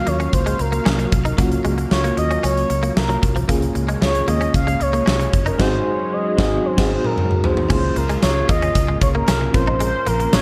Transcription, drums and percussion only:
0.07 closed hi-hat medium
0.20 closed hi-hat soft
0.33 kick medium
0.33 closed hi-hat medium
0.47 closed hi-hat medium
0.59 closed hi-hat medium
0.73 closed hi-hat medium
0.86 snare loud
0.99 closed hi-hat soft
1.12 kick medium
1.12 closed hi-hat medium
1.26 closed hi-hat medium
1.38 kick loud
1.38 closed hi-hat medium
1.52 closed hi-hat medium
1.65 closed hi-hat medium
1.78 closed hi-hat medium
1.91 snare loud
2.04 closed hi-hat medium
2.17 closed hi-hat medium
2.31 closed hi-hat soft
2.44 closed hi-hat medium
2.57 closed hi-hat medium
2.70 closed hi-hat medium
2.83 closed hi-hat soft
2.97 snare loud
3.10 closed hi-hat soft
3.23 kick medium
3.23 closed hi-hat medium
3.36 closed hi-hat medium
3.49 kick medium
3.49 closed hi-hat medium
3.62 closed hi-hat medium
3.75 closed hi-hat medium
3.89 closed hi-hat medium
4.02 snare loud
4.15 closed hi-hat medium
4.28 closed hi-hat medium
4.41 closed hi-hat soft
4.54 kick medium
4.54 closed hi-hat medium
4.68 closed hi-hat medium
4.81 closed hi-hat medium
4.94 closed hi-hat soft
5.07 snare loud
5.20 closed hi-hat soft
5.33 kick loud
5.33 closed hi-hat medium
5.47 closed hi-hat medium
5.60 kick loud
5.60 snare loud
5.60 crash medium
6.38 kick loud
6.38 snare loud
6.78 kick loud
6.78 snare loud
6.78 crash medium
7.04 mid tom medium
7.18 mid tom medium
7.31 mid tom medium
7.44 floor tom loud
7.57 floor tom medium
7.70 kick loud
7.70 crash medium
7.96 closed hi-hat medium
8.10 closed hi-hat medium
8.22 snare loud
8.22 closed hi-hat medium
8.22 tambourine medium
8.49 kick loud
8.49 closed hi-hat medium
8.62 closed hi-hat soft
8.75 kick medium
8.75 closed hi-hat medium
9.01 kick medium
9.01 closed hi-hat medium
9.28 snare loud
9.28 closed hi-hat loud
9.28 tambourine medium
9.54 kick loud
9.54 closed hi-hat medium
9.80 closed hi-hat medium
10.07 closed hi-hat medium
10.20 closed hi-hat medium
10.33 snare loud
10.33 closed hi-hat medium
10.33 tambourine medium

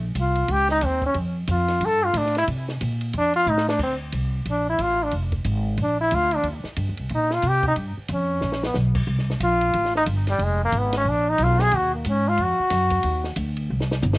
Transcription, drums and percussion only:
0.15 hi-hat pedal medium
0.15 ride medium
0.35 ride soft
0.48 ride medium
0.69 snare soft
0.81 hi-hat pedal medium
0.81 ride medium
1.02 kick medium
1.14 ride medium
1.47 hi-hat pedal medium
1.47 ride medium
1.68 snare soft
1.68 ride soft
1.81 ride medium
2.14 hi-hat pedal medium
2.14 ride medium
2.25 snare soft
2.35 snare soft
2.35 ride soft
2.48 ride medium
2.68 snare medium
2.81 hi-hat pedal medium
2.81 ride medium
3.01 ride medium
3.13 ride medium
3.34 ride soft
3.46 hi-hat pedal medium
3.58 snare medium
3.69 snare medium
3.79 kick medium
3.79 crash medium
4.12 hi-hat pedal medium
4.12 ride medium
4.45 ride medium
4.79 hi-hat pedal medium
4.79 ride medium
5.11 ride medium
5.32 kick medium
5.45 hi-hat pedal soft
5.45 ride medium
5.77 ride medium
6.11 hi-hat pedal medium
6.11 ride medium
6.31 ride medium
6.43 ride medium
6.64 snare soft
6.76 hi-hat pedal medium
6.76 ride medium
6.97 ride soft
7.09 ride medium
7.30 snare soft
7.42 hi-hat pedal medium
7.42 ride medium
7.63 kick medium
7.63 ride soft
7.76 ride medium
8.08 hi-hat pedal medium
8.08 ride medium
8.41 snare medium
8.52 snare medium
8.63 snare medium
8.74 snare medium
8.74 hi-hat pedal medium
8.95 kick medium
8.95 crash medium
9.18 snare soft
9.30 snare soft
9.40 hi-hat pedal medium
9.40 ride medium
9.61 ride soft
9.73 ride medium
9.85 snare soft
9.95 snare soft
10.06 hi-hat pedal medium
10.06 ride medium
10.27 snare soft
10.27 ride soft
10.39 ride medium
10.72 hi-hat pedal medium
10.72 ride medium
10.93 snare medium
10.93 ride medium
11.38 hi-hat pedal medium
11.38 ride medium
11.59 snare medium
11.71 ride medium
12.05 hi-hat pedal medium
12.05 ride medium
12.37 ride medium
12.70 snare soft
12.70 hi-hat pedal medium
12.70 ride medium
12.90 kick medium
12.90 ride medium
13.03 ride medium
13.24 snare soft
13.36 hi-hat pedal medium
13.36 ride medium
13.57 ride medium
13.80 snare medium
13.91 snare medium
14.02 hi-hat pedal medium
14.02 high tom medium
14.13 snare medium

